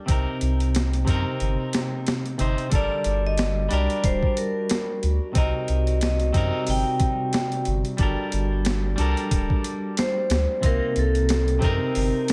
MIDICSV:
0, 0, Header, 1, 6, 480
1, 0, Start_track
1, 0, Tempo, 659341
1, 60, Time_signature, 4, 2, 24, 8
1, 8976, End_track
2, 0, Start_track
2, 0, Title_t, "Vibraphone"
2, 0, Program_c, 0, 11
2, 2002, Note_on_c, 0, 74, 106
2, 2343, Note_off_c, 0, 74, 0
2, 2377, Note_on_c, 0, 75, 103
2, 2713, Note_on_c, 0, 74, 88
2, 2720, Note_off_c, 0, 75, 0
2, 2948, Note_on_c, 0, 72, 94
2, 2954, Note_off_c, 0, 74, 0
2, 3168, Note_off_c, 0, 72, 0
2, 3189, Note_on_c, 0, 70, 71
2, 3636, Note_off_c, 0, 70, 0
2, 3909, Note_on_c, 0, 75, 93
2, 4386, Note_off_c, 0, 75, 0
2, 4395, Note_on_c, 0, 75, 86
2, 4878, Note_on_c, 0, 79, 94
2, 4882, Note_off_c, 0, 75, 0
2, 5560, Note_off_c, 0, 79, 0
2, 7277, Note_on_c, 0, 72, 105
2, 7761, Note_on_c, 0, 70, 108
2, 7763, Note_off_c, 0, 72, 0
2, 7975, Note_off_c, 0, 70, 0
2, 8001, Note_on_c, 0, 69, 100
2, 8482, Note_on_c, 0, 70, 85
2, 8485, Note_off_c, 0, 69, 0
2, 8976, Note_off_c, 0, 70, 0
2, 8976, End_track
3, 0, Start_track
3, 0, Title_t, "Clean electric guitar"
3, 0, Program_c, 1, 27
3, 43, Note_on_c, 1, 48, 62
3, 55, Note_on_c, 1, 60, 60
3, 71, Note_on_c, 1, 63, 64
3, 84, Note_on_c, 1, 70, 70
3, 747, Note_off_c, 1, 48, 0
3, 753, Note_off_c, 1, 60, 0
3, 761, Note_off_c, 1, 63, 0
3, 763, Note_on_c, 1, 48, 93
3, 768, Note_off_c, 1, 70, 0
3, 776, Note_on_c, 1, 60, 84
3, 790, Note_on_c, 1, 63, 80
3, 800, Note_on_c, 1, 70, 104
3, 1711, Note_off_c, 1, 48, 0
3, 1718, Note_off_c, 1, 60, 0
3, 1725, Note_off_c, 1, 63, 0
3, 1730, Note_off_c, 1, 70, 0
3, 1732, Note_on_c, 1, 48, 95
3, 1742, Note_on_c, 1, 60, 80
3, 1749, Note_on_c, 1, 63, 88
3, 1755, Note_on_c, 1, 72, 90
3, 1952, Note_off_c, 1, 48, 0
3, 1957, Note_off_c, 1, 60, 0
3, 1961, Note_off_c, 1, 63, 0
3, 1962, Note_off_c, 1, 72, 0
3, 1964, Note_on_c, 1, 55, 68
3, 1978, Note_on_c, 1, 50, 61
3, 1989, Note_on_c, 1, 69, 56
3, 2003, Note_on_c, 1, 70, 72
3, 2668, Note_off_c, 1, 55, 0
3, 2675, Note_off_c, 1, 50, 0
3, 2680, Note_off_c, 1, 69, 0
3, 2684, Note_on_c, 1, 55, 94
3, 2687, Note_off_c, 1, 70, 0
3, 2696, Note_on_c, 1, 62, 85
3, 2708, Note_on_c, 1, 67, 85
3, 2718, Note_on_c, 1, 70, 100
3, 3868, Note_off_c, 1, 55, 0
3, 3874, Note_off_c, 1, 62, 0
3, 3880, Note_off_c, 1, 67, 0
3, 3881, Note_on_c, 1, 48, 67
3, 3885, Note_off_c, 1, 70, 0
3, 3893, Note_on_c, 1, 60, 64
3, 3903, Note_on_c, 1, 63, 59
3, 3916, Note_on_c, 1, 70, 73
3, 4586, Note_off_c, 1, 48, 0
3, 4592, Note_off_c, 1, 60, 0
3, 4597, Note_off_c, 1, 63, 0
3, 4604, Note_off_c, 1, 70, 0
3, 4605, Note_on_c, 1, 48, 95
3, 4615, Note_on_c, 1, 60, 83
3, 4627, Note_on_c, 1, 63, 87
3, 4639, Note_on_c, 1, 70, 100
3, 5788, Note_off_c, 1, 48, 0
3, 5793, Note_off_c, 1, 60, 0
3, 5799, Note_off_c, 1, 63, 0
3, 5803, Note_on_c, 1, 55, 66
3, 5805, Note_off_c, 1, 70, 0
3, 5816, Note_on_c, 1, 62, 59
3, 5829, Note_on_c, 1, 69, 59
3, 5842, Note_on_c, 1, 70, 74
3, 6507, Note_off_c, 1, 55, 0
3, 6514, Note_off_c, 1, 62, 0
3, 6520, Note_off_c, 1, 69, 0
3, 6521, Note_on_c, 1, 55, 98
3, 6527, Note_off_c, 1, 70, 0
3, 6534, Note_on_c, 1, 62, 84
3, 6546, Note_on_c, 1, 69, 86
3, 6559, Note_on_c, 1, 70, 106
3, 7706, Note_off_c, 1, 55, 0
3, 7713, Note_off_c, 1, 62, 0
3, 7719, Note_off_c, 1, 69, 0
3, 7722, Note_on_c, 1, 48, 71
3, 7725, Note_off_c, 1, 70, 0
3, 7734, Note_on_c, 1, 60, 62
3, 7746, Note_on_c, 1, 63, 62
3, 7758, Note_on_c, 1, 58, 79
3, 8427, Note_off_c, 1, 48, 0
3, 8433, Note_off_c, 1, 60, 0
3, 8437, Note_on_c, 1, 48, 97
3, 8439, Note_off_c, 1, 63, 0
3, 8445, Note_off_c, 1, 58, 0
3, 8450, Note_on_c, 1, 60, 85
3, 8464, Note_on_c, 1, 63, 90
3, 8476, Note_on_c, 1, 70, 110
3, 8976, Note_off_c, 1, 48, 0
3, 8976, Note_off_c, 1, 60, 0
3, 8976, Note_off_c, 1, 63, 0
3, 8976, Note_off_c, 1, 70, 0
3, 8976, End_track
4, 0, Start_track
4, 0, Title_t, "Ambient pad"
4, 0, Program_c, 2, 92
4, 1986, Note_on_c, 2, 55, 76
4, 1987, Note_on_c, 2, 66, 75
4, 8976, Note_off_c, 2, 55, 0
4, 8976, Note_off_c, 2, 66, 0
4, 8976, End_track
5, 0, Start_track
5, 0, Title_t, "Sub bass"
5, 0, Program_c, 3, 38
5, 67, Note_on_c, 3, 36, 98
5, 185, Note_off_c, 3, 36, 0
5, 303, Note_on_c, 3, 36, 90
5, 762, Note_off_c, 3, 36, 0
5, 784, Note_on_c, 3, 42, 88
5, 903, Note_off_c, 3, 42, 0
5, 1024, Note_on_c, 3, 31, 89
5, 1143, Note_off_c, 3, 31, 0
5, 1747, Note_on_c, 3, 31, 82
5, 1865, Note_off_c, 3, 31, 0
5, 1984, Note_on_c, 3, 31, 92
5, 2103, Note_off_c, 3, 31, 0
5, 2221, Note_on_c, 3, 31, 94
5, 2681, Note_off_c, 3, 31, 0
5, 2706, Note_on_c, 3, 36, 92
5, 2824, Note_off_c, 3, 36, 0
5, 2943, Note_on_c, 3, 26, 85
5, 3063, Note_off_c, 3, 26, 0
5, 3663, Note_on_c, 3, 38, 92
5, 3783, Note_off_c, 3, 38, 0
5, 3900, Note_on_c, 3, 36, 101
5, 4021, Note_off_c, 3, 36, 0
5, 4141, Note_on_c, 3, 36, 91
5, 4601, Note_off_c, 3, 36, 0
5, 4620, Note_on_c, 3, 42, 98
5, 4741, Note_off_c, 3, 42, 0
5, 4862, Note_on_c, 3, 31, 82
5, 4982, Note_off_c, 3, 31, 0
5, 5584, Note_on_c, 3, 31, 96
5, 5703, Note_off_c, 3, 31, 0
5, 5818, Note_on_c, 3, 31, 104
5, 5940, Note_off_c, 3, 31, 0
5, 6063, Note_on_c, 3, 31, 96
5, 6522, Note_off_c, 3, 31, 0
5, 6540, Note_on_c, 3, 36, 92
5, 6661, Note_off_c, 3, 36, 0
5, 6784, Note_on_c, 3, 26, 89
5, 6903, Note_off_c, 3, 26, 0
5, 7498, Note_on_c, 3, 38, 91
5, 7620, Note_off_c, 3, 38, 0
5, 7744, Note_on_c, 3, 36, 98
5, 7863, Note_off_c, 3, 36, 0
5, 7981, Note_on_c, 3, 36, 96
5, 8441, Note_off_c, 3, 36, 0
5, 8462, Note_on_c, 3, 42, 94
5, 8582, Note_off_c, 3, 42, 0
5, 8707, Note_on_c, 3, 31, 86
5, 8825, Note_off_c, 3, 31, 0
5, 8976, End_track
6, 0, Start_track
6, 0, Title_t, "Drums"
6, 61, Note_on_c, 9, 42, 76
6, 62, Note_on_c, 9, 36, 96
6, 134, Note_off_c, 9, 36, 0
6, 134, Note_off_c, 9, 42, 0
6, 299, Note_on_c, 9, 42, 59
6, 372, Note_off_c, 9, 42, 0
6, 439, Note_on_c, 9, 42, 41
6, 512, Note_off_c, 9, 42, 0
6, 544, Note_on_c, 9, 42, 76
6, 554, Note_on_c, 9, 38, 101
6, 616, Note_off_c, 9, 42, 0
6, 627, Note_off_c, 9, 38, 0
6, 680, Note_on_c, 9, 42, 42
6, 753, Note_off_c, 9, 42, 0
6, 781, Note_on_c, 9, 36, 82
6, 783, Note_on_c, 9, 42, 61
6, 854, Note_off_c, 9, 36, 0
6, 855, Note_off_c, 9, 42, 0
6, 1021, Note_on_c, 9, 42, 59
6, 1094, Note_off_c, 9, 42, 0
6, 1260, Note_on_c, 9, 42, 75
6, 1270, Note_on_c, 9, 38, 98
6, 1333, Note_off_c, 9, 42, 0
6, 1343, Note_off_c, 9, 38, 0
6, 1504, Note_on_c, 9, 42, 79
6, 1514, Note_on_c, 9, 38, 113
6, 1577, Note_off_c, 9, 42, 0
6, 1587, Note_off_c, 9, 38, 0
6, 1642, Note_on_c, 9, 42, 41
6, 1715, Note_off_c, 9, 42, 0
6, 1740, Note_on_c, 9, 42, 64
6, 1813, Note_off_c, 9, 42, 0
6, 1879, Note_on_c, 9, 42, 43
6, 1952, Note_off_c, 9, 42, 0
6, 1977, Note_on_c, 9, 42, 78
6, 1980, Note_on_c, 9, 36, 96
6, 2049, Note_off_c, 9, 42, 0
6, 2053, Note_off_c, 9, 36, 0
6, 2216, Note_on_c, 9, 42, 61
6, 2289, Note_off_c, 9, 42, 0
6, 2458, Note_on_c, 9, 42, 81
6, 2468, Note_on_c, 9, 38, 102
6, 2530, Note_off_c, 9, 42, 0
6, 2541, Note_off_c, 9, 38, 0
6, 2698, Note_on_c, 9, 42, 59
6, 2771, Note_off_c, 9, 42, 0
6, 2838, Note_on_c, 9, 42, 44
6, 2911, Note_off_c, 9, 42, 0
6, 2939, Note_on_c, 9, 42, 85
6, 2940, Note_on_c, 9, 36, 102
6, 3012, Note_off_c, 9, 36, 0
6, 3012, Note_off_c, 9, 42, 0
6, 3077, Note_on_c, 9, 36, 88
6, 3149, Note_off_c, 9, 36, 0
6, 3181, Note_on_c, 9, 42, 67
6, 3253, Note_off_c, 9, 42, 0
6, 3418, Note_on_c, 9, 42, 87
6, 3428, Note_on_c, 9, 38, 111
6, 3491, Note_off_c, 9, 42, 0
6, 3501, Note_off_c, 9, 38, 0
6, 3661, Note_on_c, 9, 42, 63
6, 3734, Note_off_c, 9, 42, 0
6, 3896, Note_on_c, 9, 42, 78
6, 3897, Note_on_c, 9, 36, 99
6, 3968, Note_off_c, 9, 42, 0
6, 3970, Note_off_c, 9, 36, 0
6, 4135, Note_on_c, 9, 42, 62
6, 4208, Note_off_c, 9, 42, 0
6, 4274, Note_on_c, 9, 42, 41
6, 4347, Note_off_c, 9, 42, 0
6, 4377, Note_on_c, 9, 42, 79
6, 4387, Note_on_c, 9, 38, 105
6, 4450, Note_off_c, 9, 42, 0
6, 4460, Note_off_c, 9, 38, 0
6, 4511, Note_on_c, 9, 42, 38
6, 4583, Note_off_c, 9, 42, 0
6, 4617, Note_on_c, 9, 36, 81
6, 4617, Note_on_c, 9, 42, 61
6, 4689, Note_off_c, 9, 36, 0
6, 4690, Note_off_c, 9, 42, 0
6, 4853, Note_on_c, 9, 46, 73
6, 4926, Note_off_c, 9, 46, 0
6, 5093, Note_on_c, 9, 42, 67
6, 5096, Note_on_c, 9, 36, 93
6, 5166, Note_off_c, 9, 42, 0
6, 5169, Note_off_c, 9, 36, 0
6, 5335, Note_on_c, 9, 42, 84
6, 5345, Note_on_c, 9, 38, 115
6, 5407, Note_off_c, 9, 42, 0
6, 5418, Note_off_c, 9, 38, 0
6, 5473, Note_on_c, 9, 42, 42
6, 5546, Note_off_c, 9, 42, 0
6, 5571, Note_on_c, 9, 42, 61
6, 5644, Note_off_c, 9, 42, 0
6, 5713, Note_on_c, 9, 42, 42
6, 5786, Note_off_c, 9, 42, 0
6, 5811, Note_on_c, 9, 42, 81
6, 5815, Note_on_c, 9, 36, 97
6, 5884, Note_off_c, 9, 42, 0
6, 5888, Note_off_c, 9, 36, 0
6, 6057, Note_on_c, 9, 42, 63
6, 6130, Note_off_c, 9, 42, 0
6, 6296, Note_on_c, 9, 42, 74
6, 6306, Note_on_c, 9, 38, 106
6, 6369, Note_off_c, 9, 42, 0
6, 6379, Note_off_c, 9, 38, 0
6, 6537, Note_on_c, 9, 42, 62
6, 6610, Note_off_c, 9, 42, 0
6, 6678, Note_on_c, 9, 42, 43
6, 6750, Note_off_c, 9, 42, 0
6, 6779, Note_on_c, 9, 36, 100
6, 6780, Note_on_c, 9, 42, 88
6, 6852, Note_off_c, 9, 36, 0
6, 6853, Note_off_c, 9, 42, 0
6, 6916, Note_on_c, 9, 36, 92
6, 6989, Note_off_c, 9, 36, 0
6, 7021, Note_on_c, 9, 42, 70
6, 7094, Note_off_c, 9, 42, 0
6, 7260, Note_on_c, 9, 42, 92
6, 7270, Note_on_c, 9, 38, 113
6, 7333, Note_off_c, 9, 42, 0
6, 7343, Note_off_c, 9, 38, 0
6, 7498, Note_on_c, 9, 42, 76
6, 7508, Note_on_c, 9, 38, 105
6, 7571, Note_off_c, 9, 42, 0
6, 7581, Note_off_c, 9, 38, 0
6, 7739, Note_on_c, 9, 36, 99
6, 7739, Note_on_c, 9, 42, 83
6, 7812, Note_off_c, 9, 36, 0
6, 7812, Note_off_c, 9, 42, 0
6, 7978, Note_on_c, 9, 42, 65
6, 8051, Note_off_c, 9, 42, 0
6, 8117, Note_on_c, 9, 42, 40
6, 8190, Note_off_c, 9, 42, 0
6, 8218, Note_on_c, 9, 42, 85
6, 8228, Note_on_c, 9, 38, 107
6, 8291, Note_off_c, 9, 42, 0
6, 8301, Note_off_c, 9, 38, 0
6, 8357, Note_on_c, 9, 42, 41
6, 8430, Note_off_c, 9, 42, 0
6, 8459, Note_on_c, 9, 36, 85
6, 8459, Note_on_c, 9, 42, 60
6, 8532, Note_off_c, 9, 36, 0
6, 8532, Note_off_c, 9, 42, 0
6, 8701, Note_on_c, 9, 46, 75
6, 8773, Note_off_c, 9, 46, 0
6, 8943, Note_on_c, 9, 42, 76
6, 8953, Note_on_c, 9, 38, 105
6, 8976, Note_off_c, 9, 38, 0
6, 8976, Note_off_c, 9, 42, 0
6, 8976, End_track
0, 0, End_of_file